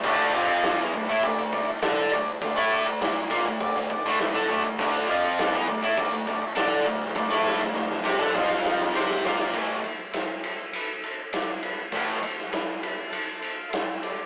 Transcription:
<<
  \new Staff \with { instrumentName = "Transistor combo organ" } { \time 4/4 \key a \minor \tempo 4 = 101 << { r1 | r1 | r1 | r4. c'''16 b''16 a''8 g''16 f''16 e''8 d''8 |
r1 | r4. c'''8 a''8. f''16 e''8 d''8 | } \\ { <d' a' d''>8 <d' a' d''>8 <d' a' d''>8 <d' a' b'>8 <d' a' d''>8 <d' a' d''>8 <d' a' c''>8 <d' a' d''>8 | <d' a' c''>8 <d' a' d''>8 <d' a' d''>8 <d' a' d''>8 <d' a' d''>8 <d' a' d''>8 <d' a' b'>8 <d' a' d''>8 | <d' a' e''>8 <d' a' f''>8 <d' a' d''>8 <d' a' d''>8 <d' a' d''>8 <d' a' d''>8 <d' a' d''>8 <d' a' f''>8 | <d' a' d''>8 <d' a' f''>8 <d' a' f''>8 <d' a' d''>8 <c' f' c''>8 <c' f' g'>8 <d' a' d''>8 <d' a' c''>8 |
<e' a' c''>8 <e' a' c''>8 <e' a' c''>8 <e' a' c''>8 <e' a' b'>8 <e' a' c''>8 <e' a' d''>8 <e' a' b'>8 | <e' a' b'>8 <e' a' c''>8 <e' a' b'>8 <e' a' b'>8 <e' a' c''>8 <e' a' c''>8 <e' a' c''>8 <e' a' c''>8 | } >> }
  \new Staff \with { instrumentName = "Distorted electric guitar" } { \time 4/4 \key a \minor <d a d'>8 <f c' f'>8. <e b>16 <d a>16 <a e'>16 <d a>16 <d a>16 <d a>16 r16 <d' a' d''>8 <d a>8 | <d a>16 <a e' a'>8 <d a>16 <d a>8 <bes f'>16 <d a>8 <d a>16 r16 <d a>16 <d a>16 <d' a'>16 <d a>16 <d a>16 | <d a d'>8 <f c' f'>8. <e b>16 <d a>16 <a e'>16 <d a>16 <d a>16 <d a>16 r16 <d' a' d''>8 <d a>8 | <d a>16 <a e' a'>8 <d a>16 <d a>8 <c' g'>16 <d' a'>16 <f c' f'>4 <c' g' c''>8 <bes f' bes'>8 |
<a, e a>8 r2. r8 | <a, e a>8 r2. r8 | }
  \new DrumStaff \with { instrumentName = "Drums" } \drummode { \time 4/4 <cymc bd>4 <hho sn>8 bd8 <hho bd>8 bd8 <hho sn>4 | <hho bd>4 <hho sn>8 bd8 <hho bd>8 bd8 <hho sn>4 | <hho bd>4 <hho sn>8 bd8 <hho bd>8 bd8 <hho sn>8. sn16 | <bd sn>16 sn16 sn16 sn16 sn16 sn16 sn16 sn16 <bd sn>16 sn16 sn16 sn16 sn16 sn16 sn16 sn16 |
<bd cymr>8 cymr8 <cymr sn>8 cymr8 cymr8 cymr8 <cymr sn>8 cymr8 | <bd cymr>8 cymr16 sn16 <cymr sn>8 cymr8 cymr8 cymr8 <cymr sn>8 cymr8 | }
>>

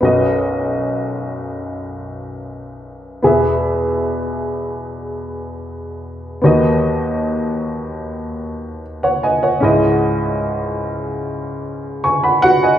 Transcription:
<<
  \new Staff \with { instrumentName = "Upright piano" } { \time 4/4 \key b \major \tempo 4 = 75 << { r1 | r1 | r2. r16 <cis'' fis''>16 <dis'' gis''>16 <cis'' fis''>16~ | <cis'' fis''>16 r2 r8. <gis'' cis'''>16 <fis'' b''>8 <dis'' gis''>16 | } \\ { r1 | r1 | r1 | r2. r8 <fis' fis''>8 | } >> }
  \new Staff \with { instrumentName = "Upright piano" } { \time 4/4 \key b \major <b,, fis, b fis' dis''>1 | <e, b, b gis' e''>1 | <dis, dis b fis' dis''>1 | <cis, gis, cis' e' dis''>1 | }
>>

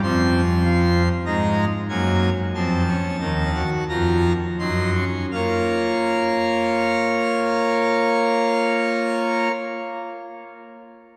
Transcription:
<<
  \new Staff \with { instrumentName = "Pipe organ" } { \time 4/4 \key bes \minor \tempo 4 = 41 << { c'''4 bes''8 aes''8 a''4 bes''8 c'''8 | <bes' des'' f''>1 | } \\ { c'8 f'8 ees'8 bes8 c'16 des'16 ees'16 ges'16 f'8 ees'16 des'16 | f'1 | } >> }
  \new Staff \with { instrumentName = "Pipe organ" } { \clef bass \time 4/4 \key bes \minor <f, f>4 <aes, aes>8 <ges, ges>8 <f, f>8 <ees, ees>8 <f, f>8 <ges, ges>8 | bes1 | }
>>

